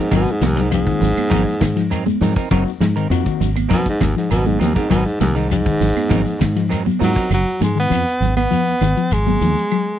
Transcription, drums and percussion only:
0.11 kick, ride bell, claves, shekere
0.27 shekere
0.42 snare, ride bell, high conga, shekere
0.57 snare, ride bell, shekere
0.72 ride bell, claves, shekere
0.87 kick, shekere
1.01 open hi-hat, low conga, shekere
1.18 high conga, claves, shekere
1.31 kick, ride bell, high conga, shekere
1.48 shekere
1.61 kick, snare, ride bell, high conga, claves, shekere
1.77 snare, ride bell, shekere
1.91 snare, ride bell, claves, shekere
2.06 high conga, shekere
2.21 open hi-hat, high conga, low conga, shekere
2.36 kick, shekere
2.51 kick, ride bell, claves, shekere
2.68 shekere
2.81 snare, ride bell, high conga, shekere
2.97 ride bell, shekere
3.11 ride bell, claves, shekere
3.26 kick, shekere
3.41 ride bell, low conga, shekere
3.56 ride bell, high conga, claves, shekere
3.71 kick, ride bell, shekere
3.86 kick, shekere
4.01 kick, snare, ride bell, high conga, low conga, claves, shekere
4.17 snare, shekere
4.31 ride bell, claves, shekere
4.46 high conga, shekere
4.61 snare, ride bell, low conga, shekere
4.76 kick, shekere
4.91 kick, ride bell, claves, shekere
5.07 shekere
5.21 snare, ride bell, high conga, shekere
5.36 snare, ride bell, shekere
5.51 ride bell, claves, shekere
5.66 kick, shekere
5.81 snare, open hi-hat, low conga, shekere
5.97 high conga, claves, shekere
6.11 kick, ride bell, high conga, shekere
6.26 shekere
6.41 kick, snare, ride bell, high conga, claves, shekere
6.56 snare, ride bell, shekere
6.71 snare, ride bell, claves, shekere
6.86 high conga, shekere
7.01 open hi-hat, low conga, shekere
7.16 kick, shekere
7.31 low conga, claves, shekere
7.48 shekere
7.62 high conga, shekere
7.78 shekere
7.92 claves, shekere
8.08 shekere
8.22 low conga, shekere
8.37 high conga, claves, shekere
8.52 shekere
8.67 shekere
8.81 high conga, claves, shekere
8.96 shekere
9.11 claves, shekere
9.27 high conga, shekere
9.41 low conga, shekere
9.57 shekere
9.72 claves

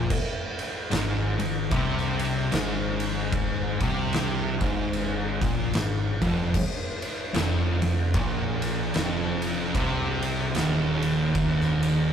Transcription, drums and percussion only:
0.10 kick, crash
0.59 ride
0.91 snare, ride
1.40 ride
1.71 kick, ride
1.98 snare
2.19 ride
2.52 snare, ride
3.00 ride
3.32 kick, ride
3.81 kick, ride
4.13 snare, ride
4.61 kick, ride
4.93 ride
5.42 kick, ride
5.73 snare, ride
6.22 kick, ride
6.54 kick, crash
7.02 ride
7.34 snare, ride
7.82 ride
8.14 kick, ride
8.62 ride
8.94 snare, ride
9.42 ride
9.75 kick, ride
10.22 ride
10.55 snare, ride
11.02 ride
11.35 kick, ride
11.61 snare
11.83 ride

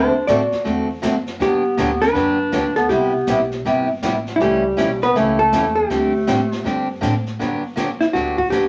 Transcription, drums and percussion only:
0.28 kick, snare, hi-hat pedal
0.52 snare
0.65 brush sweep, kick, snare
1.03 kick, snare, hi-hat pedal
1.26 snare
1.40 brush sweep, kick, snare
1.77 kick, snare, hi-hat pedal
2.02 snare
2.15 brush sweep, kick, snare
2.52 kick, snare, hi-hat pedal
2.76 snare
2.89 brush sweep, kick, snare
3.27 kick, snare, hi-hat pedal
3.51 snare
3.65 brush sweep, kick, snare
4.02 kick, snare, hi-hat pedal
4.27 snare
4.40 brush sweep, kick, snare
4.78 kick, snare, hi-hat pedal
5.02 snare
5.15 brush sweep, kick, snare
5.53 kick, snare, hi-hat pedal
5.90 brush sweep, kick, snare
6.27 kick, snare, hi-hat pedal
6.52 snare
6.65 brush sweep, kick, snare
7.02 kick, snare, hi-hat pedal
7.26 snare
7.40 brush sweep, kick, snare
7.77 kick, snare, hi-hat pedal
8.01 snare
8.14 brush sweep, kick, snare
8.38 kick
8.52 kick, snare, hi-hat pedal

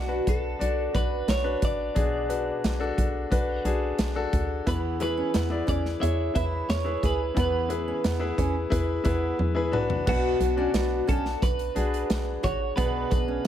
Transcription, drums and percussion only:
0.27 kick, closed hi-hat
0.61 closed hi-hat
0.95 kick, closed hi-hat
1.28 snare, closed hi-hat
1.62 kick, closed hi-hat
1.96 kick, closed hi-hat
2.30 closed hi-hat
2.64 snare, closed hi-hat
2.98 kick, closed hi-hat
3.32 kick, closed hi-hat
3.65 closed hi-hat
3.99 snare, closed hi-hat
4.33 kick, closed hi-hat
4.67 kick, closed hi-hat
5.00 closed hi-hat
5.34 snare, closed hi-hat
5.68 kick, closed hi-hat
5.85 snare
6.03 closed hi-hat
6.36 kick, closed hi-hat
6.70 snare, closed hi-hat
7.03 kick, closed hi-hat
7.37 kick, closed hi-hat
7.70 closed hi-hat
8.04 snare, closed hi-hat
8.38 kick, closed hi-hat
8.72 kick, closed hi-hat
9.05 kick, closed hi-hat
9.39 high tom
9.73 mid tom
9.90 floor tom
10.07 kick, crash
10.41 closed hi-hat
10.74 snare, closed hi-hat
11.09 kick, closed hi-hat
11.25 snare
11.42 kick, closed hi-hat
11.59 closed hi-hat
11.76 closed hi-hat
11.94 closed hi-hat
12.10 snare, closed hi-hat
12.44 kick, closed hi-hat
12.78 kick, closed hi-hat
13.11 kick, closed hi-hat

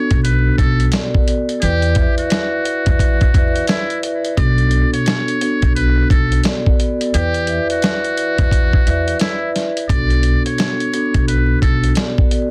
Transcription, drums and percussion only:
0.11 kick, closed hi-hat
0.25 closed hi-hat
0.58 kick, closed hi-hat
0.80 closed hi-hat
0.92 snare, closed hi-hat
1.15 kick
1.28 closed hi-hat
1.49 closed hi-hat
1.62 closed hi-hat
1.82 closed hi-hat
1.95 kick, closed hi-hat
2.18 closed hi-hat
2.30 snare, closed hi-hat
2.65 closed hi-hat
2.86 kick, closed hi-hat
2.99 kick, closed hi-hat
3.21 kick, closed hi-hat
3.34 kick, closed hi-hat
3.56 closed hi-hat
3.67 snare, closed hi-hat
3.90 closed hi-hat
4.03 closed hi-hat
4.25 closed hi-hat
4.37 kick, closed hi-hat
4.58 closed hi-hat
4.71 closed hi-hat
4.94 closed hi-hat
5.06 snare, closed hi-hat
5.28 closed hi-hat
5.41 closed hi-hat
5.62 kick, closed hi-hat
5.76 closed hi-hat
6.10 kick, closed hi-hat
6.32 closed hi-hat
6.44 snare, closed hi-hat
6.66 kick
6.80 closed hi-hat
7.01 closed hi-hat
7.14 closed hi-hat
7.34 closed hi-hat
7.47 closed hi-hat
7.70 closed hi-hat
7.82 snare, closed hi-hat
8.04 closed hi-hat
8.18 closed hi-hat
8.38 kick, closed hi-hat
8.51 kick, closed hi-hat
8.73 kick
8.87 closed hi-hat
9.08 closed hi-hat
9.20 snare, closed hi-hat
9.56 snare, closed hi-hat
9.77 closed hi-hat
9.89 kick, closed hi-hat
10.10 closed hi-hat
10.23 closed hi-hat
10.46 closed hi-hat
10.58 snare, closed hi-hat
10.80 closed hi-hat
10.94 closed hi-hat
11.14 kick, closed hi-hat
11.28 closed hi-hat
11.62 kick, closed hi-hat
11.84 closed hi-hat
11.95 snare, closed hi-hat
12.18 kick
12.31 closed hi-hat

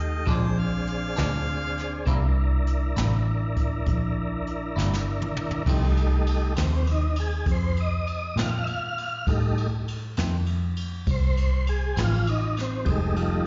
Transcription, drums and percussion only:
0.27 kick, closed hi-hat
0.87 closed hi-hat
1.17 snare, closed hi-hat
1.78 snare, closed hi-hat
2.07 kick, closed hi-hat
2.67 closed hi-hat
2.96 snare, closed hi-hat
3.57 kick, closed hi-hat
3.86 kick, closed hi-hat
4.47 closed hi-hat
4.79 snare
4.94 snare
5.22 mid tom
5.37 mid tom
5.51 floor tom
5.66 kick, crash
5.97 ride
6.27 ride
6.56 snare, ride
6.87 ride
7.16 ride
7.46 kick, ride
7.76 ride
8.07 ride
8.37 snare, ride
8.66 ride
8.98 ride
9.27 kick, ride
9.57 ride
9.88 ride
10.17 snare, ride
10.46 ride
10.77 ride
11.07 kick, ride
11.37 ride
11.67 ride
11.97 snare, ride
12.27 ride
12.57 snare, ride
12.85 kick, ride
13.16 ride

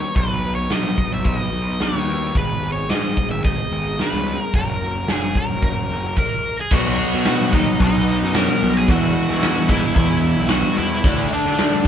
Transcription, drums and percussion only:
0.15 kick, open hi-hat
0.44 open hi-hat
0.70 snare, open hi-hat
0.98 kick, open hi-hat
1.25 kick, open hi-hat
1.52 open hi-hat
1.80 snare, open hi-hat
2.07 open hi-hat
2.35 kick, open hi-hat
2.63 open hi-hat
2.89 snare, open hi-hat
3.17 kick, open hi-hat
3.45 kick, open hi-hat
3.71 open hi-hat
3.99 snare, open hi-hat
4.25 open hi-hat
4.54 kick, open hi-hat
4.81 open hi-hat
5.08 snare, open hi-hat
5.35 kick, open hi-hat
5.62 kick, open hi-hat
5.90 open hi-hat
6.17 kick, crash
6.71 kick, crash
7.25 snare, open hi-hat
7.53 kick
7.80 kick, open hi-hat
8.34 snare, open hi-hat
8.88 kick, open hi-hat
9.30 snare
9.42 snare, open hi-hat
9.69 kick
9.96 kick, open hi-hat
10.48 snare, open hi-hat
11.04 kick, open hi-hat
11.46 snare
11.58 snare, open hi-hat

